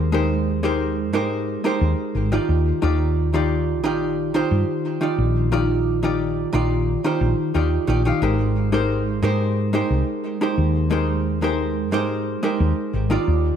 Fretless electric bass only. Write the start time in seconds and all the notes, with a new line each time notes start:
Already playing: D#2
1.14 G#2
1.81 D#2
2.15 G#1
2.49 D#2
2.83 D#2
3.83 A#1
4.51 G2
5.18 A#1
6.54 A#1
7.21 A#1
7.55 D#2
7.88 A#1
8.22 G#1
9.23 G#2
9.90 C2
10.58 D#2
11.93 G#2
12.60 D#2
12.94 G#1
13.28 D#2